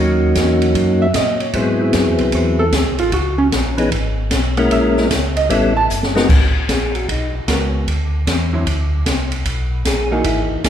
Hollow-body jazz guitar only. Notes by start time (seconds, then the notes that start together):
Already playing: F#3 F#4
1.02 E5
1.16 D#5
1.41 C#5
1.55 C5
1.81 E4
1.95 G#4
2.21 B4
2.35 C5
2.59 A4
2.75 G#4
2.99 F4
3.13 F#4
3.38 C#4
4.58 F#5
4.72 E5
4.98 D#5
5.12 C#5
5.37 D#5
5.51 E5
5.77 A5
7.48 G#3 B3 F#4 A#4
8.53 D3 F#3 C4 E4
10.11 E3 A#3 D#4 G#4
10.64 E3 A#3 D#4 G#4